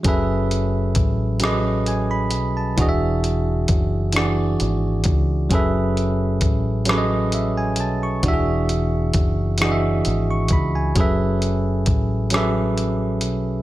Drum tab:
HH |xxxxxx|xxxxxx|xxxxxx|xxxxxx|
SD |---r--|---r--|---r--|---r--|
BD |o-o---|o-o--o|o-o---|o-o--o|

HH |xxxxxx|
SD |---r--|
BD |o-o---|